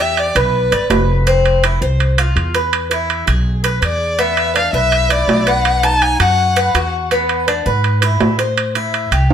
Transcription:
Already playing: E2
0.00 G4 E5
0.17 D5, high timbale
0.35 B1 B4, high timbale
0.72 G1 D5, high timbale
0.90 F1 B4, high timbale, low timbale
1.27 C4, high timbale
1.45 high timbale
1.64 E4, high timbale
1.81 C2 C5
2.00 high timbale
2.18 F4, high timbale
2.36 E2, high timbale
2.54 B4, high timbale
2.73 high timbale
2.91 E4, high timbale
3.10 high timbale
3.27 B1 G#4, high timbale
3.64 B4, high timbale
3.82 E2 G#4 D5, high timbale
4.19 B3 E5, high timbale
4.37 high timbale
4.55 D4 F5, high timbale
4.73 B1 B4 E5
4.92 high timbale
5.10 E4 D5, high timbale
5.28 B1, high timbale, low timbale
5.47 B4 F#5, high timbale
5.65 high timbale
5.83 D#4 A5, high timbale
6.02 G#5, high timbale
6.20 F#2 F#4 F#5, high timbale
6.56 B4, high timbale
6.75 E2 F#4, high timbale
7.11 B3, high timbale
7.29 high timbale
7.48 D4, high timbale
7.66 G#2 B4
7.84 high timbale
8.02 E4, high timbale
8.20 A2, high timbale, low timbale
8.39 C5, high timbale
8.58 high timbale
8.75 E4, high timbale
8.94 high timbale
9.11 C2 G4, high timbale
9.30 high timbale

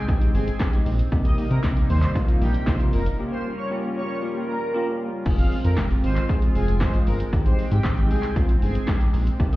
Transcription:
Already playing: G#3 C4 G5
0.08 G#3 C4 D#4 G4, kick, shaker
0.21 closed hi-hat, shaker
0.34 G1 G#4, open hi-hat, shaker
0.48 closed hi-hat, shaker
0.60 G#3 C4 D#4 G4, kick, snare, clap, shaker
0.73 closed hi-hat, shaker
0.86 A#1, open hi-hat, shaker
0.99 closed hi-hat, shaker
1.12 C2 C3 G3 A#3 C4 D#4 G4, kick, shaker
1.25 D#5, closed hi-hat, shaker
1.38 open hi-hat, shaker
1.51 C3 A#4, closed hi-hat, shaker
1.63 C2 A#3 C4 D#4 G4, kick, snare, clap, shaker
1.77 closed hi-hat, shaker
1.89 D#2 C5, open hi-hat, shaker
2.02 clap, closed hi-hat, shaker
2.15 A#3 C4 D#4 F4, kick, shaker
2.28 closed hi-hat, shaker
2.41 A#1 G4, open hi-hat, shaker
2.54 closed hi-hat, shaker
2.67 C2 A#3 C4 D#4 F4 C5, kick, snare, clap, shaker
2.80 closed hi-hat, shaker
2.93 F1 A#4, open hi-hat, shaker
3.06 closed hi-hat, shaker
3.19 G3 A#3 C#4 F4 G4 A#4
3.32 C5
3.58 C#5
3.71 A#3 C#4 F4 G4
3.96 C#5
4.22 A#3 C#4 F4 G4
4.48 A#4
4.74 A#3 C#4 F4 G4
5.26 F1 G#3 C4 F4 G#4, kick, crash, shaker
5.39 F5, closed hi-hat, shaker
5.52 open hi-hat, shaker
5.65 F2 A#4, closed hi-hat, shaker
5.77 F1 G#3 C4 F4 G4, kick, snare, clap, shaker
5.91 closed hi-hat, shaker
6.03 G#1 C5, open hi-hat, shaker
6.16 clap, closed hi-hat, shaker
6.29 G#3 C4 F4 G#4, kick, shaker
6.42 closed hi-hat, shaker
6.55 F1 G#4, open hi-hat, shaker
6.68 closed hi-hat, shaker
6.80 G#1 G#3 C4 F4 G#4 C5, kick, snare, clap, shaker
6.94 closed hi-hat, shaker
7.07 G1 A#4, open hi-hat, shaker
7.20 closed hi-hat, shaker
7.33 G#1 G#3 C4 D#4 G4 G5, kick, shaker
7.46 C5, closed hi-hat, shaker
7.59 open hi-hat, shaker
7.71 G#2 G4, closed hi-hat, shaker
7.84 G#1 G#3 C4 D#4 G4, kick, snare, clap, shaker
7.97 closed hi-hat, shaker
8.11 C2 G#4, open hi-hat, shaker
8.23 clap, closed hi-hat, shaker
8.36 G#3 C4 D#4 F4, kick, shaker
8.49 closed hi-hat, shaker
8.62 G1 G#4, open hi-hat, shaker
8.75 closed hi-hat, shaker
8.87 G#3 C4 D#4 G4, kick, snare, clap, shaker
9.01 closed hi-hat, shaker
9.14 A#1, open hi-hat, shaker
9.27 closed hi-hat, shaker
9.40 C2 C3 G3 A#3 C4 D#4 G4, kick, shaker
9.53 D#5, closed hi-hat, shaker

